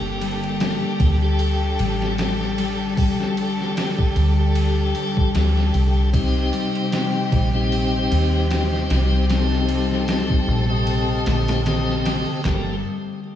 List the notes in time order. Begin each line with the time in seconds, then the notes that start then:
Already playing: G1 D3 A#3 G4 A4
0.21 G3, ride
0.43 ride
0.60 snare, ride
1.00 D2 A3, kick, ride
1.23 G4 A4
1.39 ride
1.79 A1 G3, ride
2.02 snare
2.18 G4 A4, snare, ride
2.41 snare
2.58 G3, ride
2.97 G4 A4, kick, open hi-hat
3.20 snare
3.37 A3, ride
3.60 snare
3.77 snare, ride
3.99 kick
4.16 D2 G3, ride
4.39 G4 A4
4.55 ride
4.94 G3, ride
5.17 kick
5.35 D2 G4 A4, snare, ride
5.57 snare
5.74 C2 A3, ride
6.13 C3 C4 D#4 G4, kick, ride
6.53 G3, ride
6.75 ride
6.92 snare, ride
7.32 A#1 G3, kick, ride
7.53 C4 D#4 G4
7.72 ride
8.11 D#2 A3, ride
8.50 C4 D#4 G4, snare, ride
8.74 snare
8.90 C2 G3, snare, ride
9.29 C4 D#4 G4 A4, snare, ride
9.52 snare
9.69 G3, ride
9.91 snare
10.08 snare, ride
10.30 kick
10.47 A#1 A3
10.69 C4 G4 D#5
10.87 ride
11.26 A#1 D3, snare, ride
11.48 snare, ride
11.66 C4 G4 D#5, snare, ride
11.89 snare
12.05 A3, snare, ride
12.44 G1 G3 A#3 G4 A4, kick, snare, clap